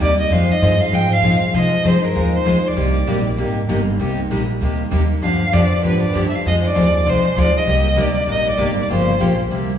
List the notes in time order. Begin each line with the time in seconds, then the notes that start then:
0.00 D#2 C3 G3 A#3 D#4 G4 D5
0.20 D#5
0.30 F2 F3 G#3 C4 D#4 F4 G#4 C5 F5
0.51 D#5
0.61 G2 F3 G#3 C4 D#4 F4 G#4 C5
0.81 F5
0.91 G#2 F3 G#3 C4 D#4 F4 G#4 C5 G5
1.13 F5
1.22 A#2 F3 G#3 C4 D#4 F4 G#4 C5
1.40 muted upright bass stroke
1.53 C3 F3 G#3 C4 D#4 F4 G#4 C5 D#5
1.84 G2 F3 G#3 C4 D#4 F4 G#4 C5
2.05 A#4
2.15 D#2 F3 G#3 C4 D#4 F4 G#4 C5
2.36 C5
2.45 D2 F3 G#3 C4 D#4 F4 G#4 C5
2.67 D5
2.76 C2 C3 G3 A#3 D#4 G4
3.07 A#1 C3 G3 A#3 D#4 G4
3.38 G#1 C3 G3 A#3 D#4 G4
3.69 G1 C3 G3 A#3 D#4 G4
4.00 C2 C3 G3 A#3 D#4 G4
4.30 A#1 C3 G3 A#3 D#4 G4
4.61 D2 C3 G3 A#3 D#4 G4
4.91 D#2 C3 G3 A#3 D#4 G4
5.22 G2 D3 F3 B3 D4 G4 F5
5.52 F2 D3 F3 B3 D4 G4 D5
5.83 G#2 D3 F3 B3 D4 G4 B4
6.02 D5, muted upright bass stroke
6.15 G2 D3 F3 B3 D4 G4
6.29 E5
6.35 F5
6.45 F2 F3 G#3 C4 D#4 F4 G#4 C5 D#5
6.66 D5
6.75 D#2 F3 G#3 C4 D#4 F4 G#4 C5
7.06 C2 F3 G#3 C4 D#4 F4 G#4 C5
7.24 muted upright bass stroke
7.36 D2 F3 G#3 C4 D#4 F4 G#4 C5 D5
7.58 D#5
7.66 C2 C3 G3 A#3 D#4 G4
7.96 D2 C3 G3 A#3 D#4 G4
8.01 D5
8.28 A#1 C3 G3 A#3 D#4 G4
8.32 D#5
8.50 D5
8.58 G1 C3 G3 A#3 D#4 G4
8.81 D5
8.90 G1 C#3 F3 A#3 F4 G4
8.94 C5
9.20 A#1 C#3 F3 A#3 F4 G4
9.51 C2 C3 G3 A#3 E4 G4